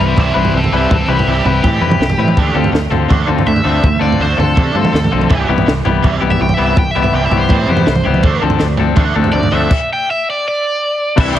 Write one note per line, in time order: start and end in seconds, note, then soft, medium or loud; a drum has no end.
0.00 0.14 C2 medium
0.00 0.15 C3 medium
0.00 0.15 E3 medium
0.00 0.23 G3 medium
0.00 0.23 C4 medium
0.00 0.17 E4 medium
0.00 0.22 E4 medium
0.00 0.22 B4 medium
0.00 0.17 C5 medium
0.17 0.32 C2 loud
0.17 0.34 C3 medium
0.17 0.34 E3 medium
0.17 0.35 G3 medium
0.17 0.36 E4 medium
0.17 kick loud
0.17 floor tom medium
0.17 mid tom medium
0.21 0.37 C5 medium
0.34 0.49 C2 medium
0.34 0.52 C3 medium
0.34 0.52 E3 medium
0.34 0.59 G3 medium
0.34 0.59 C4 medium
0.34 0.59 E4 medium
0.34 0.53 E4 medium
0.34 0.58 B4 medium
0.39 0.55 C5 medium
0.45 floor tom medium
0.53 0.67 C2 medium
0.53 0.71 C3 medium
0.53 0.71 E3 medium
0.57 0.72 C4 medium
0.57 0.74 A4 medium
0.64 floor tom medium
0.72 0.86 C2 medium
0.72 0.89 C3 medium
0.72 0.89 E3 medium
0.72 0.90 G3 loud
0.72 0.96 G3 medium
0.72 0.96 C4 medium
0.72 0.96 E4 medium
0.72 0.96 B4 medium
0.77 0.92 C4 medium
0.77 0.92 A4 medium
0.91 1.05 C2 medium
0.91 1.07 C3 medium
0.91 1.07 E3 medium
0.91 1.09 C4 medium
0.91 kick loud
0.91 floor tom medium
0.95 1.10 A4 medium
1.08 1.22 C2 medium
1.08 1.25 C3 medium
1.08 1.25 E3 medium
1.08 1.33 G3 medium
1.08 1.33 C4 medium
1.08 1.32 E4 medium
1.08 1.27 E4 medium
1.08 1.27 G4 medium
1.08 1.32 B4 medium
1.19 floor tom medium
1.26 1.41 C2 medium
1.26 1.44 C3 medium
1.26 1.44 E3 medium
1.26 1.45 G3 medium
1.26 1.43 E4 medium
1.26 1.44 G4 medium
1.44 1.59 C2 medium
1.44 1.61 C3 medium
1.44 1.62 E3 medium
1.44 1.70 G3 medium
1.44 1.70 C4 medium
1.44 1.62 E4 medium
1.44 1.69 E4 medium
1.44 1.62 G4 medium
1.44 1.69 B4 medium
1.44 floor tom medium
1.63 1.78 A2 loud
1.63 1.80 C3 medium
1.63 1.81 E3 medium
1.63 1.81 G3 medium
1.63 2.70 G4 medium
1.63 kick loud
1.63 floor tom medium
1.63 mid tom medium
1.81 1.95 F2 medium
1.81 1.99 C3 medium
1.81 1.99 E3 medium
1.81 2.06 G3 medium
1.81 2.06 C4 medium
1.81 2.05 E4 medium
1.81 2.05 B4 medium
1.91 floor tom medium
1.91 mid tom medium
1.99 2.13 C2 medium
1.99 2.17 C3 medium
1.99 2.17 E3 medium
1.99 snare medium
2.10 floor tom medium
2.10 mid tom medium
2.18 2.32 A2 medium
2.18 2.35 C3 medium
2.18 2.35 E3 medium
2.18 2.37 G3 medium
2.18 2.37 C4 medium
2.18 2.37 E4 medium
2.18 2.37 B4 medium
2.28 mid tom medium
2.37 2.51 D2 medium
2.37 2.54 D3 medium
2.37 2.55 A3 medium
2.37 2.55 D4 medium
2.37 kick loud
2.37 floor tom medium
2.54 2.69 D2 medium
2.54 2.79 D3 medium
2.54 2.70 D3 medium
2.54 2.71 A3 medium
2.54 2.79 C4 medium
2.54 2.79 F4 medium
2.54 2.78 A4 medium
2.64 floor tom medium
2.71 2.87 D2 medium
2.71 2.89 D3 medium
2.71 2.89 A3 medium
2.71 snare medium
2.90 3.05 D2 medium
2.90 3.07 D3 medium
2.90 3.16 D3 medium
2.90 3.08 A3 medium
2.90 3.15 C4 medium
2.90 3.15 F4 medium
2.90 3.15 A4 medium
2.90 floor tom medium
3.08 3.24 D2 medium
3.08 3.26 D3 medium
3.08 3.27 A3 medium
3.08 3.27 D4 medium
3.08 kick medium
3.08 floor tom medium
3.08 mid tom medium
3.27 3.43 D2 loud
3.27 3.44 D3 medium
3.27 3.52 D3 medium
3.27 3.45 A3 medium
3.27 3.52 C4 medium
3.27 3.52 F4 medium
3.27 3.52 A4 medium
3.39 floor tom medium
3.46 3.61 D2 loud
3.46 3.62 D3 medium
3.46 3.63 A3 medium
3.46 4.01 E5 loud
3.56 floor tom medium
3.64 3.79 D2 medium
3.64 3.82 D3 medium
3.64 3.89 D3 medium
3.64 3.82 A3 medium
3.64 3.89 C4 medium
3.64 3.82 D4 medium
3.64 3.88 F4 medium
3.64 3.88 A4 medium
3.83 3.98 D2 loud
3.83 4.00 D3 medium
3.83 4.00 A3 medium
3.83 kick loud
3.83 floor tom medium
3.99 4.15 D2 medium
3.99 4.25 D3 medium
3.99 4.19 D3 medium
3.99 4.19 A3 medium
3.99 4.25 C4 medium
3.99 4.25 F4 medium
3.99 4.24 A4 loud
3.99 4.20 D5 medium
4.12 floor tom medium
4.19 4.34 D2 medium
4.19 4.37 D3 medium
4.19 4.38 A3 medium
4.19 4.38 D4 medium
4.19 4.39 C5 medium
4.37 4.52 D2 medium
4.37 4.62 D3 medium
4.37 4.54 D3 medium
4.37 4.55 A3 medium
4.37 4.62 C4 medium
4.37 4.62 F4 medium
4.37 4.61 A4 medium
4.37 5.46 A4 medium
4.37 floor tom medium
4.55 4.71 C3 loud
4.55 4.73 D3 medium
4.55 4.74 A3 medium
4.55 4.74 D4 medium
4.55 kick loud
4.55 floor tom medium
4.55 mid tom medium
4.74 4.89 G2 medium
4.74 4.91 D3 medium
4.74 5.00 D3 medium
4.74 4.92 A3 medium
4.74 4.99 C4 medium
4.74 4.99 F4 medium
4.74 4.99 A4 medium
4.85 floor tom medium
4.85 mid tom medium
4.92 5.07 D2 medium
4.92 5.10 D3 medium
4.92 5.10 A3 medium
4.92 snare medium
5.04 floor tom medium
5.04 mid tom medium
5.11 5.27 B1 medium
5.11 5.28 D3 medium
5.11 5.31 D3 medium
5.11 5.28 A3 medium
5.11 5.31 C4 medium
5.11 5.30 F4 medium
5.11 5.30 A4 medium
5.21 mid tom medium
5.29 5.45 C2 medium
5.29 5.47 C3 medium
5.29 5.47 E3 loud
5.29 5.47 G3 medium
5.29 kick loud
5.29 floor tom medium
5.48 5.63 C2 medium
5.48 5.65 C3 medium
5.48 5.66 E3 medium
5.48 5.73 G3 medium
5.48 5.73 B3 medium
5.48 5.73 E4 medium
5.48 5.72 G4 medium
5.58 floor tom medium
5.66 5.82 C2 medium
5.66 5.83 C3 medium
5.66 5.83 E3 medium
5.66 snare medium
5.85 6.00 C2 medium
5.85 6.01 C3 medium
5.85 6.02 E3 medium
5.85 6.09 G3 medium
5.85 6.09 B3 medium
5.85 6.09 E4 medium
5.85 6.09 G4 medium
5.85 floor tom medium
6.02 6.18 C2 medium
6.02 6.20 C3 medium
6.02 6.21 E3 medium
6.02 6.21 G3 medium
6.02 kick medium
6.02 floor tom medium
6.02 mid tom medium
6.21 6.36 C2 medium
6.21 6.38 C3 medium
6.21 6.38 E3 medium
6.21 6.46 G3 medium
6.21 6.46 B3 medium
6.21 6.46 E4 medium
6.21 6.45 G4 medium
6.30 6.42 E5 medium
6.30 floor tom medium
6.39 6.55 C2 medium
6.39 6.55 C3 medium
6.39 6.56 E3 medium
6.39 6.54 G5 medium
6.49 floor tom medium
6.54 6.75 C3 medium
6.54 6.75 E3 medium
6.54 6.76 G3 medium
6.54 6.82 G4 medium
6.54 6.65 E5 medium
6.58 6.73 C2 medium
6.58 6.83 G3 medium
6.58 6.82 B3 medium
6.58 6.82 E4 medium
6.66 6.78 E5 medium
6.76 6.92 C2 medium
6.76 6.94 C3 medium
6.76 6.94 E3 medium
6.76 6.91 G5 medium
6.76 kick loud
6.76 floor tom medium
6.91 7.02 E5 medium
6.95 7.10 C2 medium
6.95 7.12 C3 medium
6.95 7.12 E3 medium
6.95 7.20 G3 medium
6.95 7.20 B3 medium
6.95 7.19 E4 medium
6.95 7.19 G4 medium
7.03 7.14 E5 medium
7.03 floor tom medium
7.13 7.28 C2 medium
7.13 7.30 C3 medium
7.13 7.31 E3 medium
7.13 7.31 G3 medium
7.13 7.26 G5 medium
7.26 7.38 E5 medium
7.31 7.46 C2 medium
7.31 7.48 C3 medium
7.31 7.49 E3 medium
7.31 7.56 G3 medium
7.31 7.56 B3 medium
7.31 7.56 E4 medium
7.31 7.56 G4 medium
7.31 floor tom medium
7.37 8.45 C5 loud
7.49 7.65 A2 loud
7.49 7.66 C3 medium
7.49 7.66 E3 medium
7.49 7.68 G3 loud
7.49 kick medium
7.49 floor tom medium
7.49 mid tom medium
7.67 7.82 F2 medium
7.67 7.84 C3 medium
7.67 7.85 E3 medium
7.67 7.93 G3 medium
7.67 7.93 B3 medium
7.67 7.93 E4 medium
7.67 7.93 G4 medium
7.77 floor tom medium
7.77 mid tom medium
7.86 8.01 C2 medium
7.86 8.02 C3 medium
7.86 8.03 E3 medium
7.86 snare medium
7.96 floor tom medium
7.96 mid tom medium
8.03 8.20 C#2 medium
8.03 8.21 C3 medium
8.03 8.22 E3 medium
8.03 8.24 G3 medium
8.03 8.24 B3 medium
8.03 8.24 E4 medium
8.03 8.24 G4 medium
8.14 mid tom medium
8.23 8.38 D2 medium
8.23 8.40 D3 medium
8.23 8.41 A3 medium
8.23 8.41 D4 medium
8.23 kick loud
8.23 floor tom medium
8.41 8.57 D2 medium
8.41 8.58 D3 medium
8.41 8.66 F3 medium
8.41 8.58 A3 medium
8.41 8.66 C4 medium
8.41 8.66 D4 medium
8.41 8.66 A4 loud
8.50 floor tom medium
8.59 8.75 D2 medium
8.59 8.76 D3 medium
8.59 8.76 A3 medium
8.59 snare medium
8.77 8.94 D2 medium
8.77 8.95 D3 medium
8.77 9.04 F3 medium
8.77 8.95 A3 medium
8.77 9.04 C4 medium
8.77 9.03 D4 medium
8.77 9.03 A4 medium
8.77 floor tom medium
8.96 9.11 D2 loud
8.96 9.13 D3 medium
8.96 9.13 A3 medium
8.96 9.14 D4 loud
8.96 kick loud
8.96 floor tom medium
8.96 mid tom medium
9.14 9.30 D2 loud
9.14 9.31 D3 medium
9.14 9.40 F3 medium
9.14 9.32 A3 medium
9.14 9.40 C4 medium
9.14 9.40 D4 medium
9.14 9.40 A4 loud
9.24 floor tom medium
9.33 9.48 D2 loud
9.33 9.50 D3 medium
9.33 9.50 A3 medium
9.33 9.55 D5 loud
9.43 floor tom medium
9.51 9.66 D2 medium
9.51 9.69 D3 medium
9.51 9.71 F3 medium
9.51 9.69 A3 loud
9.51 9.71 C4 medium
9.51 9.69 D4 medium
9.51 9.71 D4 medium
9.51 9.71 A4 medium
9.51 9.89 E5 medium
9.71 kick loud
9.71 crash loud
9.93 10.09 G5 medium
10.11 10.27 E5 medium
10.30 10.46 D5 medium
10.48 11.17 D5 loud
11.16 11.31 C2 medium
11.16 11.33 C3 loud
11.16 11.34 C3 medium
11.16 11.34 E3 loud
11.16 11.35 G3 medium
11.16 11.35 C4 medium
11.16 11.35 D4 loud
11.16 11.35 E4 loud
11.16 11.39 E4 medium
11.16 11.39 D5 medium
11.16 11.39 G5 medium
11.16 11.39 C6 loud
11.16 kick loud
11.16 crash loud
11.21 11.30 E5 loud
11.30 11.36 C5 medium
11.34 11.39 C2 medium
11.34 11.39 C3 medium
11.34 11.39 E3 medium
11.34 11.39 G3 loud
11.34 11.39 G3 medium
11.34 11.39 C4 medium
11.34 11.39 D4 loud
11.34 11.39 E4 medium
11.34 11.39 E4 loud